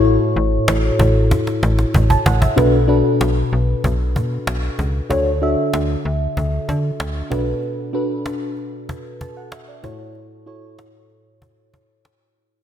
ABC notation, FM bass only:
X:1
M:4/4
L:1/16
Q:1/4=95
K:Bdor
V:1 name="FM bass" clef=bass
A,,,2 A,,,2 A,,,2 A,,,3 z A,,,2 A,,,2 A,,,2 | B,,,4 B,,,2 B,,,2 B,,,2 B,,2 B,,,2 C,,2 | D,,4 D,,2 D,,2 D,,2 D,2 D,,2 B,,,2 | z16 |
z16 |]